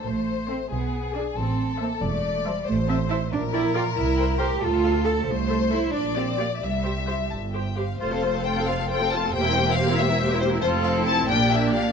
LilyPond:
<<
  \new Staff \with { instrumentName = "Violin section" } { \time 6/8 \key a \phrygian \tempo 4. = 92 r4 e''8 r4 gis''8 | r4 a''8 r4 a''8 | \key f \major r8 a''8 a''8 r8 g''8 g''8 | r8 g''8 g''8 r8 f''8 f''8 |
r8 e''8 e''8 r8 f''8 f''8 | r8 e''8 e''8 a''8 g''8 f''8 | c''4 g''8 f''8 g''8 a''8 | g''4 f''8 e''4 c''8 |
c''8 f''8 a''8 g''8 e''8 f''8 | }
  \new Staff \with { instrumentName = "Violin section" } { \time 6/8 \key a \phrygian c''4. gis'4. | a'4. d''4. | \key f \major c''4. bes'4.~ | bes'4. a'4. |
c''4. d''4. | e''2~ e''16 r8. | c''16 <a' f''>16 c''16 <a' f''>16 c''16 <a' f''>16 c''16 <a' f''>16 c''16 <a' f''>16 c''16 <a' f''>16 | c''16 <bes' e''>16 c''16 <bes' e''>16 c''16 <bes' e''>16 c''16 <bes' e''>16 c''16 <bes' e''>16 c''16 <bes' e''>16 |
<a' c''>4. <g' d''>4. | }
  \new Staff \with { instrumentName = "Viola section" } { \time 6/8 \key a \phrygian << { r4 c''8 r4 d''8 | r4 e''8 r4 e''8 | \key f \major r8 e''8 e''8 r8 d''8 d''8 | r8 c''8 c''8 r8 a'8 a'8 |
r8 c''8 c''8 r8 d''8 d''8 | r8 c''8 c''8 r8 c''8 c''8 | f'16 a'16 f'16 a'16 f'16 a'16 f'16 a'16 f'16 a'16 f'16 a'16 | g'16 e'16 g'16 e'16 g'16 e'16 g'16 e'16 g'16 e'16 g'16 e'16 |
f'8. e'8. d'4. | } \\ { r4 a'8 r4 gis'8 | r4 c''8 r4 c''8 | r8 c''8 c''8 r8 bes'8 bes'8 | r8 bes'8 bes'8 r8 a'8 a'8 |
r8 a'8 a'8 r8 g'8 g'8 | r8 g'8 g'8 r8 g'8 g'8 | a16 c'16 a16 c'16 a16 c'16 a16 c'16 a16 c'16 a16 c'16 | bes16 c'16 bes16 c'16 bes16 c'16 bes16 c'16 bes16 c'16 bes16 c'16 |
c'4. bes4. | } >> }
  \new Staff \with { instrumentName = "Cello section" } { \time 6/8 \key a \phrygian a4 c'8 b4 d'8 | c'4 bes8 a4 g8 | \key f \major a8 c'8 e'8 d'8 e'8 f'8 | e'4 g'8 f'4 a'8 |
a4 e'8 d'8 c'8 bes8 | g4. r4. | f,2. | e,2. |
f,4. bes,4. | }
  \new Staff \with { instrumentName = "Double bass section" } { \clef bass \time 6/8 \key a \phrygian a,,4. b,,4. | a,,4. e,,4. | \key f \major a,,4. bes,,4. | c,4. d,4. |
c,4. bes,,4. | c,4. g,,4. | f,,2. | e,,2. |
f,,4. bes,,4. | }
>>